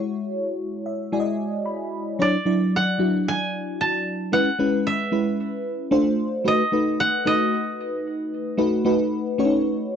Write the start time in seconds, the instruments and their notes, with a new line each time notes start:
Already playing: fm electric piano G#3 E4 F#4 C#5
0.86 fm electric piano E5
1.12 fm electric piano G#3 E4 F#4 D5 G#5
1.20 fm electric piano D#5
1.66 fm electric piano B5
2.19 fm electric piano F#3 D4 E4 C#5, koto D5
2.45 fm electric piano F#3 D4 E4 D5
2.76 koto F#5
2.98 fm electric piano F#3 D4 E4 F#4
3.28 koto G#5
3.81 koto A5
4.32 fm electric piano G#3 C#4 E4 B4, koto F#5
4.59 fm electric piano G#3 C#4 E4 B4
4.87 koto E5
5.11 fm electric piano G#3 C#4 E4 B4
5.91 fm electric piano A3 D4 F4 C5
6.44 fm electric piano A3 D#4 F#4 B4, koto D#5
6.72 fm electric piano A3 D#4 F#4 B4
7.00 koto F#5
7.25 fm electric piano A3 D#4 F#4 B4, koto D#5
8.57 fm electric piano A3 D#4 F#4 B4
8.85 fm electric piano A3 D#4 F#4 B4
9.38 fm electric piano A3 C#4 F#4 C#5
9.45 fm electric piano D#4